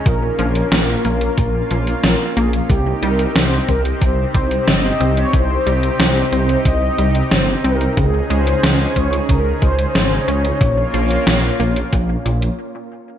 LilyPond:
<<
  \new Staff \with { instrumentName = "Analog polysynth" } { \time 4/4 \key c \phrygian \tempo 4 = 91 bes'2. bes'8 aes'8 | g'8 bes'8 c''8 bes'8 c''4 ees''8. des''16 | c''4 c''4 ees''4 c''8 bes'8 | aes'8 c''4 des''8 bes'8 c''4 des''8~ |
des''2. r4 | }
  \new Staff \with { instrumentName = "Analog synth pad" } { \time 4/4 \key c \phrygian << { <bes des' f'>1 | <c c' g'>1~ | <c c' g'>1 | <des des' aes'>1 |
<bes f'>2. r4 | } \\ { r1 | ees'1~ | ees'1~ | ees'1 |
r1 | } >> }
  \new Staff \with { instrumentName = "Synth arpeggio sound" } { \clef bass \time 4/4 \key c \phrygian bes,8 f8 bes,8 bes8 bes,8 f8 bes,8 bes8 | c8 g8 c8 c'8 c8 g8 c8 c'8 | c8 g8 c8 c'8 c8 g8 c8 c'8 | des8 aes8 des8 des'8 des8 aes8 des8 des'8 |
bes,8 f8 bes,8 bes8 bes,8 bes,8 r4 | }
  \new Staff \with { instrumentName = "Detuned saw bass" } { \clef bass \time 4/4 \key c \phrygian bes,,8 bes,,8 bes,,8 bes,,8 bes,,8 bes,,8 bes,,8 bes,,8 | c,8 c,8 c,8 c,8 c,8 c,8 g,,8 c,8 | c,8 c,8 c,8 c,8 c,8 c,8 g,,8 c,8 | des,8 des,8 des,8 des,8 des,8 des,8 aes,,8 des,8 |
bes,,8 bes,,8 bes,,8 bes,,8 bes,,8 bes,,8 r4 | }
  \new DrumStaff \with { instrumentName = "Drums" } \drummode { \time 4/4 <hh bd>8 hh16 hh16 <hh sn>8 hh16 hh16 <hh bd>8 hh16 hh16 <hh sn>8 hh16 hh16 | <hh bd>8 hh16 hh16 <hh sn>8 <hh bd>16 hh16 <hh bd>8 <hh bd>16 hh16 <hh sn>8 hh16 hh16 | <hh bd>8 hh16 hh16 <hh sn>8 hh16 hh16 <hh bd>8 hh16 hh16 <hh sn>8 hh16 hh16 | <hh bd>8 hh16 hh16 <hh sn>8 <hh bd>16 hh16 <hh bd>8 <hh bd>16 hh16 <hh sn>8 hh16 hh16 |
<hh bd>8 hh16 hh16 <hh sn>8 hh16 hh16 <hh bd>8 hh16 hh16 r4 | }
>>